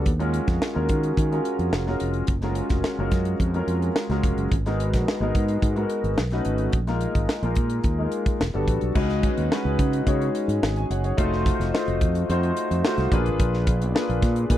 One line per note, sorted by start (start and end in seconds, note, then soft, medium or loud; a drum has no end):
0.06 0.38 D#2 medium
0.06 kick medium
0.06 closed hi-hat medium
0.19 0.53 G#3 medium
0.19 0.53 C#4 medium
0.19 0.54 F4 medium
0.19 0.54 F#4 medium
0.19 0.54 A#4 medium
0.19 closed hi-hat soft
0.34 closed hi-hat medium
0.48 0.58 F2 medium
0.48 kick medium
0.48 snare soft
0.48 closed hi-hat soft
0.62 snare loud
0.74 0.87 D#2 medium
0.74 1.09 G#3 medium
0.74 1.09 C#4 medium
0.74 1.09 F4 medium
0.74 1.09 F#4 medium
0.74 1.09 A#4 medium
0.89 1.11 D#3 medium
0.89 kick medium
0.89 closed hi-hat medium
1.03 closed hi-hat soft
1.17 1.39 D#3 medium
1.17 kick medium
1.17 closed hi-hat medium
1.32 1.65 G#3 medium
1.32 1.65 C#4 medium
1.32 1.66 F4 medium
1.32 1.66 F#4 medium
1.32 1.66 A#4 medium
1.32 closed hi-hat soft
1.45 closed hi-hat medium
1.59 1.70 F2 medium
1.59 closed hi-hat soft
1.73 1.94 F1 medium
1.73 snare loud
1.87 2.21 G#3 medium
1.87 2.21 C#4 medium
1.87 2.21 F4 medium
1.87 2.21 F#4 medium
1.87 2.21 A#4 medium
1.87 snare soft
2.00 2.22 F1 medium
2.00 closed hi-hat medium
2.14 closed hi-hat soft
2.27 2.60 F#1 medium
2.27 kick loud
2.27 closed hi-hat medium
2.42 2.76 G#3 medium
2.42 2.77 C#4 medium
2.42 2.77 F4 medium
2.42 2.77 F#4 medium
2.42 2.77 A#4 medium
2.42 snare soft
2.42 closed hi-hat soft
2.55 closed hi-hat medium
2.70 2.81 F1 medium
2.70 kick medium
2.70 snare soft
2.70 closed hi-hat soft
2.84 snare loud
2.98 3.09 F#1 medium
2.98 3.32 G#3 medium
2.98 3.33 C#4 medium
2.98 3.33 F4 medium
2.98 3.33 F#4 medium
2.98 3.33 A#4 medium
3.11 3.33 F#2 medium
3.11 kick medium
3.11 snare soft
3.11 closed hi-hat medium
3.25 closed hi-hat soft
3.40 3.61 F2 medium
3.40 kick medium
3.40 closed hi-hat medium
3.54 3.88 G#3 medium
3.54 3.88 C#4 medium
3.54 3.88 F4 medium
3.54 3.88 F#4 medium
3.54 3.88 A#4 medium
3.54 closed hi-hat soft
3.67 3.89 F2 medium
3.67 closed hi-hat medium
3.82 closed hi-hat soft
3.96 snare loud
4.09 4.20 C#2 medium
4.09 4.43 G#3 medium
4.09 4.44 C#4 medium
4.09 4.44 F4 medium
4.09 4.44 F#4 medium
4.09 4.44 A#4 medium
4.09 snare soft
4.09 closed hi-hat soft
4.23 4.34 F1 medium
4.23 kick medium
4.23 closed hi-hat medium
4.37 4.48 F#1 medium
4.37 closed hi-hat soft
4.51 4.94 G#1 medium
4.51 kick medium
4.51 closed hi-hat medium
4.66 4.99 G#3 medium
4.66 5.00 B3 medium
4.66 5.00 D#4 medium
4.66 5.00 F#4 medium
4.66 5.00 A#4 medium
4.66 snare soft
4.66 closed hi-hat soft
4.80 closed hi-hat medium
4.94 5.04 A#1 medium
4.94 kick medium
4.94 snare soft
4.94 closed hi-hat soft
5.08 snare loud
5.20 5.31 G#1 medium
5.20 5.55 G#3 medium
5.20 5.55 B3 medium
5.20 5.55 D#4 medium
5.20 5.55 F#4 medium
5.20 5.55 A#4 medium
5.35 5.56 G#2 medium
5.35 kick medium
5.35 closed hi-hat medium
5.48 closed hi-hat medium
5.62 5.84 G#2 medium
5.62 kick medium
5.62 closed hi-hat medium
5.76 6.10 G#3 medium
5.76 6.10 B3 medium
5.76 6.10 D#4 medium
5.76 6.10 F#4 medium
5.76 6.11 A#4 medium
5.76 closed hi-hat soft
5.90 closed hi-hat medium
6.04 6.14 G#1 medium
6.04 closed hi-hat soft
6.18 6.39 B1 medium
6.18 snare loud
6.31 6.66 A3 medium
6.31 6.66 C#4 medium
6.31 6.66 D#4 medium
6.31 6.66 F#4 medium
6.31 6.66 B4 medium
6.31 snare soft
6.31 closed hi-hat soft
6.45 6.67 G#1 medium
6.45 closed hi-hat medium
6.58 closed hi-hat soft
6.72 7.05 A#1 medium
6.72 kick medium
6.72 closed hi-hat medium
6.87 7.21 G#3 medium
6.87 7.21 A#3 medium
6.87 7.21 D#4 medium
6.87 7.21 F4 medium
6.87 7.22 A#4 medium
6.87 snare soft
6.87 closed hi-hat soft
7.01 closed hi-hat medium
7.15 7.26 G#1 medium
7.15 kick medium
7.15 closed hi-hat soft
7.29 snare loud
7.42 7.53 A#1 medium
7.42 7.77 G#3 medium
7.42 7.77 A#3 medium
7.42 7.77 D#4 medium
7.42 7.77 F4 medium
7.42 7.78 A#4 medium
7.42 closed hi-hat soft
7.55 7.78 A#2 medium
7.55 kick medium
7.55 closed hi-hat medium
7.70 closed hi-hat soft
7.84 8.06 D#2 medium
7.84 kick medium
7.84 closed hi-hat medium
7.99 8.32 G#3 medium
7.99 8.32 A#3 medium
7.99 8.33 D#4 medium
7.99 8.33 F4 medium
7.99 8.33 A#4 medium
8.12 closed hi-hat medium
8.26 kick medium
8.26 closed hi-hat soft
8.40 8.51 E1 medium
8.40 snare loud
8.54 8.65 G1 medium
8.54 8.88 G3 medium
8.54 8.88 B3 medium
8.54 8.88 D4 medium
8.54 8.88 F#4 medium
8.54 8.88 A4 medium
8.68 8.78 A1 medium
8.68 kick medium
8.68 closed hi-hat medium
8.81 8.93 B1 medium
8.81 closed hi-hat soft
8.95 9.27 C#2 loud
8.95 9.29 G#3 loud
8.95 9.29 C#4 medium
8.95 9.29 D#4 medium
8.95 9.30 F#4 medium
8.95 9.30 B4 medium
8.95 kick loud
8.95 crash medium
9.10 snare soft
9.10 closed hi-hat soft
9.23 kick medium
9.23 closed hi-hat medium
9.38 9.48 D#2 medium
9.38 closed hi-hat medium
9.52 9.85 G#3 medium
9.52 9.86 C#4 medium
9.52 9.86 D#4 medium
9.52 9.86 F#4 medium
9.52 9.86 B4 medium
9.52 snare loud
9.65 9.76 C#2 medium
9.79 10.00 C#3 medium
9.79 kick medium
9.79 closed hi-hat medium
9.93 closed hi-hat medium
10.06 10.28 C#3 loud
10.06 10.40 G#3 medium
10.06 10.41 C#4 medium
10.06 10.41 D#4 medium
10.06 10.41 F#4 medium
10.06 10.41 C#5 medium
10.06 kick medium
10.06 closed hi-hat medium
10.22 closed hi-hat soft
10.35 closed hi-hat medium
10.48 10.59 G#2 medium
10.48 closed hi-hat medium
10.63 10.84 G#1 medium
10.63 snare loud
10.76 10.90 D#5 medium
10.76 10.90 G#5 medium
10.76 closed hi-hat soft
10.90 11.11 F#1 medium
10.90 11.03 C#5 medium
10.90 11.04 F#5 medium
10.90 closed hi-hat medium
11.04 11.31 G#4 medium
11.04 11.30 C#5 medium
11.04 closed hi-hat soft
11.17 11.50 F1 loud
11.17 11.51 A3 loud
11.17 11.51 D#4 medium
11.17 11.51 F4 medium
11.17 11.51 F#4 medium
11.17 11.52 C5 loud
11.17 kick loud
11.17 closed hi-hat medium
11.33 snare soft
11.46 kick loud
11.46 closed hi-hat medium
11.60 11.70 F1 medium
11.60 snare soft
11.60 closed hi-hat soft
11.73 12.07 A3 medium
11.73 12.07 D#4 medium
11.73 12.07 F4 medium
11.73 12.07 F#4 medium
11.73 12.07 C5 medium
11.73 snare loud
11.88 12.03 F1 medium
11.88 closed hi-hat soft
12.01 12.22 F2 medium
12.01 kick medium
12.01 closed hi-hat medium
12.15 closed hi-hat medium
12.29 12.50 F2 loud
12.29 12.62 A3 medium
12.29 12.63 D#4 medium
12.29 12.63 F4 medium
12.29 12.63 F#4 medium
12.29 12.63 C5 medium
12.29 closed hi-hat medium
12.43 closed hi-hat soft
12.57 closed hi-hat medium
12.71 12.81 F2 medium
12.71 closed hi-hat soft
12.85 13.12 A3 medium
12.85 13.12 D#4 medium
12.85 13.11 F4 medium
12.85 13.13 F#4 medium
12.85 13.13 C5 medium
12.85 snare loud
12.98 13.08 C2 medium
12.98 snare soft
12.98 closed hi-hat soft
13.12 13.28 A#1 loud
13.12 13.78 A#3 medium
13.12 13.78 D4 medium
13.12 13.79 F4 medium
13.12 13.79 G#4 medium
13.12 13.79 B4 loud
13.12 kick medium
13.12 closed hi-hat medium
13.26 13.37 G#1 medium
13.26 closed hi-hat soft
13.40 13.82 A#1 medium
13.40 kick medium
13.40 closed hi-hat medium
13.54 snare soft
13.67 kick medium
13.67 closed hi-hat medium
13.82 13.92 B1 medium
13.82 closed hi-hat soft
13.95 14.28 A#3 medium
13.95 14.28 D4 medium
13.95 14.28 F4 medium
13.95 14.29 G#4 medium
13.95 14.29 B4 medium
13.95 snare loud
14.09 14.20 A#1 medium
14.09 closed hi-hat soft
14.22 14.44 A#2 medium
14.22 kick medium
14.22 snare soft
14.22 closed hi-hat medium
14.36 closed hi-hat medium
14.50 14.58 A#2 medium
14.50 14.58 A#3 medium
14.50 14.58 D4 medium
14.50 14.58 F4 medium
14.50 14.58 G#4 medium
14.50 14.58 B4 medium
14.50 kick medium
14.50 closed hi-hat medium